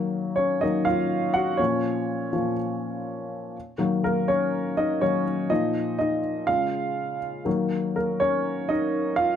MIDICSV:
0, 0, Header, 1, 2, 480
1, 0, Start_track
1, 0, Key_signature, -6, "minor"
1, 0, Tempo, 488202
1, 1571, Time_signature, 4, 2, 24, 8
1, 9204, End_track
2, 0, Start_track
2, 0, Title_t, "Upright piano"
2, 0, Program_c, 0, 0
2, 0, Control_c, 0, 64, 127
2, 0, Note_on_c, 0, 51, 47
2, 0, Note_on_c, 0, 54, 43
2, 0, Note_on_c, 0, 58, 52
2, 351, Note_on_c, 0, 73, 63
2, 377, Note_on_c, 0, 61, 46
2, 596, Note_off_c, 0, 51, 0
2, 597, Note_off_c, 0, 61, 0
2, 600, Note_on_c, 0, 75, 73
2, 602, Note_off_c, 0, 54, 0
2, 606, Note_off_c, 0, 58, 0
2, 609, Note_off_c, 0, 73, 0
2, 611, Note_on_c, 0, 51, 41
2, 617, Note_on_c, 0, 54, 39
2, 620, Note_on_c, 0, 58, 42
2, 622, Note_on_c, 0, 63, 56
2, 827, Note_off_c, 0, 51, 0
2, 830, Note_off_c, 0, 54, 0
2, 832, Note_off_c, 0, 58, 0
2, 835, Note_on_c, 0, 77, 79
2, 840, Note_off_c, 0, 63, 0
2, 853, Note_off_c, 0, 75, 0
2, 862, Note_on_c, 0, 65, 57
2, 1304, Note_off_c, 0, 65, 0
2, 1313, Note_on_c, 0, 78, 78
2, 1338, Note_off_c, 0, 77, 0
2, 1341, Note_on_c, 0, 66, 64
2, 1548, Note_on_c, 0, 73, 74
2, 1560, Note_off_c, 0, 66, 0
2, 1566, Note_on_c, 0, 46, 47
2, 1570, Note_off_c, 0, 78, 0
2, 1575, Note_on_c, 0, 53, 43
2, 1579, Note_on_c, 0, 61, 55
2, 1583, Control_c, 0, 64, 0
2, 1746, Control_c, 0, 64, 127
2, 2253, Note_off_c, 0, 46, 0
2, 2257, Note_off_c, 0, 53, 0
2, 2279, Note_off_c, 0, 61, 0
2, 2288, Note_on_c, 0, 53, 35
2, 2290, Note_on_c, 0, 46, 39
2, 2294, Note_on_c, 0, 61, 42
2, 2481, Note_off_c, 0, 73, 0
2, 2506, Note_off_c, 0, 53, 0
2, 2507, Note_off_c, 0, 46, 0
2, 2509, Note_off_c, 0, 61, 0
2, 3503, Control_c, 0, 64, 0
2, 3685, Control_c, 0, 64, 127
2, 3718, Note_on_c, 0, 51, 45
2, 3726, Note_on_c, 0, 54, 44
2, 3731, Note_on_c, 0, 58, 50
2, 3959, Note_off_c, 0, 58, 0
2, 3974, Note_on_c, 0, 58, 52
2, 3974, Note_on_c, 0, 70, 67
2, 4196, Note_off_c, 0, 58, 0
2, 4209, Note_on_c, 0, 73, 72
2, 4216, Note_on_c, 0, 61, 51
2, 4220, Note_off_c, 0, 70, 0
2, 4657, Note_off_c, 0, 73, 0
2, 4661, Note_off_c, 0, 61, 0
2, 4693, Note_on_c, 0, 75, 75
2, 4705, Note_on_c, 0, 63, 56
2, 4913, Note_off_c, 0, 51, 0
2, 4916, Note_off_c, 0, 54, 0
2, 4922, Note_off_c, 0, 63, 0
2, 4928, Note_on_c, 0, 51, 40
2, 4929, Note_on_c, 0, 73, 75
2, 4931, Note_on_c, 0, 54, 37
2, 4938, Note_on_c, 0, 58, 46
2, 4940, Note_off_c, 0, 75, 0
2, 4943, Note_on_c, 0, 61, 56
2, 5146, Note_off_c, 0, 51, 0
2, 5148, Note_off_c, 0, 54, 0
2, 5152, Note_off_c, 0, 58, 0
2, 5385, Note_off_c, 0, 61, 0
2, 5406, Note_on_c, 0, 75, 78
2, 5408, Note_on_c, 0, 46, 47
2, 5412, Note_on_c, 0, 53, 43
2, 5421, Note_on_c, 0, 63, 67
2, 5426, Note_off_c, 0, 73, 0
2, 5426, Control_c, 0, 64, 0
2, 5613, Control_c, 0, 64, 127
2, 5865, Note_off_c, 0, 63, 0
2, 5870, Note_off_c, 0, 75, 0
2, 5885, Note_on_c, 0, 75, 72
2, 5907, Note_on_c, 0, 63, 59
2, 6095, Note_off_c, 0, 46, 0
2, 6097, Note_off_c, 0, 53, 0
2, 6335, Note_off_c, 0, 75, 0
2, 6347, Note_off_c, 0, 63, 0
2, 6360, Note_on_c, 0, 77, 80
2, 6369, Note_on_c, 0, 49, 47
2, 6376, Note_on_c, 0, 56, 40
2, 6379, Note_on_c, 0, 65, 60
2, 6386, Control_c, 0, 64, 0
2, 6529, Control_c, 0, 64, 127
2, 7048, Note_off_c, 0, 77, 0
2, 7059, Note_off_c, 0, 65, 0
2, 7292, Note_off_c, 0, 49, 0
2, 7295, Note_off_c, 0, 56, 0
2, 7324, Note_on_c, 0, 51, 49
2, 7332, Note_on_c, 0, 54, 44
2, 7335, Note_on_c, 0, 58, 54
2, 7348, Control_c, 0, 64, 0
2, 7537, Control_c, 0, 64, 127
2, 7816, Note_off_c, 0, 58, 0
2, 7825, Note_on_c, 0, 70, 59
2, 7830, Note_on_c, 0, 58, 46
2, 8046, Note_off_c, 0, 58, 0
2, 8061, Note_on_c, 0, 73, 76
2, 8066, Note_off_c, 0, 70, 0
2, 8073, Note_on_c, 0, 61, 54
2, 8510, Note_off_c, 0, 61, 0
2, 8541, Note_on_c, 0, 75, 74
2, 8552, Note_off_c, 0, 73, 0
2, 8553, Note_on_c, 0, 63, 62
2, 8984, Note_off_c, 0, 75, 0
2, 8991, Note_off_c, 0, 63, 0
2, 9009, Note_on_c, 0, 77, 81
2, 9032, Note_on_c, 0, 65, 69
2, 9204, Note_off_c, 0, 51, 0
2, 9204, Note_off_c, 0, 54, 0
2, 9204, Note_off_c, 0, 65, 0
2, 9204, Note_off_c, 0, 77, 0
2, 9204, End_track
0, 0, End_of_file